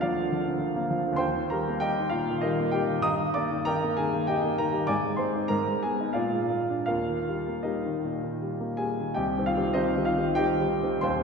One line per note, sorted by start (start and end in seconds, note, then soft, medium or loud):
0.00 1.17 D2 medium
0.00 0.18 D3 soft
0.00 0.03 F3 soft
0.00 0.26 F3 medium
0.00 0.13 A#3 soft
0.00 1.23 D4 medium
0.00 0.85 F4 medium
0.00 1.23 A#4 medium
0.00 0.02 D5 medium
0.00 0.85 D5 medium
0.00 0.89 F5 medium
0.18 0.41 D3 soft
0.32 0.55 F3 soft
0.46 0.70 D3 medium
0.59 0.83 F3 soft
0.76 0.99 A#3 medium
0.90 1.14 F3 medium
1.05 1.20 D3 soft
1.13 2.96 D#2 medium
1.13 1.48 C6 medium
1.18 1.47 C5 medium
1.18 1.47 G5 medium
1.36 1.60 D#3 soft
1.50 1.75 G3 medium
1.50 1.79 A#4 medium
1.50 1.81 A#5 medium
1.69 1.92 A#3 medium
1.80 2.06 G3 medium
1.80 2.09 G4 medium
1.80 2.09 D#5 medium
1.80 2.11 G5 loud
1.99 2.22 D#3 soft
2.10 2.36 A#2 soft
2.10 2.39 F4 medium
2.10 2.41 F5 medium
2.29 2.52 D#3 medium
2.41 2.68 G3 medium
2.41 2.71 D#4 medium
2.41 2.71 A#4 medium
2.41 2.72 D#5 medium
2.59 2.83 A#3 medium
2.71 2.98 G3 medium
2.71 3.01 G4 medium
2.71 3.03 G5 medium
2.90 3.04 D#3 medium
3.00 4.83 G2 medium
3.00 3.32 D#5 medium
3.00 3.32 A#5 medium
3.00 3.34 D#6 loud
3.20 3.44 D#3 soft
3.34 3.60 A#3 medium
3.34 3.63 D5 medium
3.34 3.65 D6 medium
3.50 3.75 D#3 soft
3.65 3.92 D#4 medium
3.65 3.95 A#4 medium
3.65 3.95 G5 medium
3.65 3.97 A#5 loud
3.83 4.07 A#3 medium
3.97 4.23 D#3 medium
3.97 4.26 G#4 medium
3.97 4.28 G#5 medium
4.14 4.38 A#3 medium
4.27 4.53 D#4 medium
4.27 4.56 G4 medium
4.27 4.56 D#5 medium
4.27 4.58 G5 medium
4.45 4.68 A#3 medium
4.58 4.84 D#3 soft
4.58 4.87 A#4 medium
4.58 4.89 A#5 medium
4.73 4.88 G3 soft
4.87 5.48 G#2 medium
4.87 5.17 D5 medium
4.87 5.17 G#5 medium
4.87 5.19 D6 medium
5.05 5.30 G#3 soft
5.16 5.45 C4 medium
5.16 5.49 C5 medium
5.16 5.50 C6 medium
5.36 5.52 D#4 soft
5.48 6.15 G#2 medium
5.48 5.81 A#4 medium
5.48 5.83 A#5 medium
5.67 5.94 G#3 soft
5.83 6.11 B3 soft
5.83 6.15 G#4 medium
5.83 6.17 G#5 medium
6.01 6.18 D#4 soft
6.13 6.88 A#2 medium
6.13 6.87 F4 medium
6.13 6.86 D5 medium
6.13 6.84 F5 medium
6.33 6.64 G#3 soft
6.50 6.82 A#3 soft
6.70 6.91 D4 soft
6.86 9.08 D#2 soft
6.86 7.62 F4 medium
6.86 7.62 A#4 medium
6.86 7.65 F5 medium
7.08 7.40 D#3 soft
7.29 7.60 G3 soft
7.48 7.79 A#3 soft
7.63 7.96 G3 soft
7.63 8.73 D#4 soft
7.63 8.73 A#4 soft
7.63 8.76 D#5 medium
7.85 8.15 D#3 soft
8.04 8.34 A#2 soft
8.23 8.53 D#3 soft
8.42 8.72 G3 soft
8.60 8.90 A#3 soft
8.77 9.07 G3 soft
8.77 9.10 G#4 medium
8.77 9.12 G#5 medium
9.00 9.15 D#3 soft
9.14 9.35 C2 medium
9.14 9.43 G4 medium
9.14 9.43 D#5 medium
9.14 9.45 G5 medium
9.37 9.54 D#3 soft
9.37 9.54 G3 soft
9.37 9.55 C4 medium
9.46 9.74 F4 medium
9.46 9.76 F5 medium
9.57 9.74 D#3 soft
9.57 9.74 G3 medium
9.57 9.74 C4 medium
9.73 9.93 D#3 medium
9.73 9.94 G3 medium
9.73 9.94 C4 medium
9.73 10.03 D#4 medium
9.73 10.03 C5 medium
9.73 10.05 D#5 medium
9.97 10.15 D#3 medium
9.97 10.15 G3 medium
9.97 10.15 C4 medium
10.05 10.35 F4 medium
10.05 10.37 F5 medium
10.17 10.35 D#3 medium
10.17 10.36 G3 soft
10.17 10.36 C4 medium
10.35 10.57 D#3 medium
10.35 10.57 G3 medium
10.35 10.57 C4 medium
10.35 10.98 G4 medium
10.35 10.99 D#5 medium
10.35 11.01 G5 medium
10.60 10.80 D#3 medium
10.60 10.80 G3 medium
10.60 10.80 C4 medium
10.83 11.02 D#3 soft
10.83 11.02 G3 soft
10.83 11.02 C4 medium
11.01 11.23 D#1 medium
11.01 11.23 D#2 medium
11.01 11.23 C5 medium
11.01 11.23 G5 medium
11.01 11.23 C6 medium